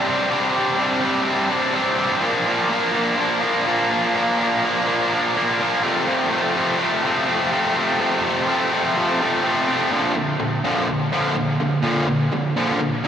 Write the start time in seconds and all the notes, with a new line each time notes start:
Already playing: C3
0.06 G3 C4 D4
0.30 C3 G3 C4 D4
0.55 G3 C4 D4
0.78 C3 G3 C4 D4
1.03 C3 G3 C4 D4
1.25 C3 G3 C4
1.30 D4
1.49 G3 C4 D4
1.53 C3
1.73 C3 G3 C4 D4
1.97 G3 C4 D4
2.21 A#2 F3 A#3 D4
2.46 F3 A#3 D4
2.69 A#2 F3 A#3 D4
2.93 A#2 F3 A#3 D4
3.17 A#2 F3 A#3 D4
3.41 A#2 F3 A#3 D4
3.65 A#2 F3 A#3 D4
3.90 F3 A#3 D4
4.14 A#2 F3 A#3 D4
4.38 F3 A#3 D4
4.63 A#2 F3 A#3 D4
4.86 A#2 F3 A#3 D4
5.11 A#2 F3 A#3 D4
5.35 A#2 F3 A#3 D4
5.59 A#2 F3 A#3 D4
5.83 F2 C3 F3 A3 C4
6.07 F2 C3 F3 A3 C4
6.30 F3 A3 C4
6.55 C3 F3 A3 C4
6.79 F2 C3 F3 A3 C4
7.03 C3 F3 A3 C4
7.26 F2 C3 F3 A3 C4
7.50 C3 F3 A3 C4
7.75 F3 A3 C4
7.98 F2 C3 F3 A3 C4
8.24 F3 A3 C4
8.47 C3 F3 A3 C4
8.72 F2 C3 F3 A3 C4
8.96 C3 F3 A3 C4
9.20 F2 C3 F3 A3 C4
9.44 C3 F3 A3 C4
9.67 F3 A3 C4
9.91 A#2 D3 F3
10.16 A#2 D3
10.39 A#2 D3
10.64 A#2 D3 F3
10.89 A#2 D3
11.12 A#2 D3 F3
11.36 A#2 D3
11.60 A#2 D3
11.83 A#2 D3 F3
12.08 A#2 D3
12.32 A#2 D3
12.57 A#2 D3 F3
12.81 A#2 D3
13.04 A#2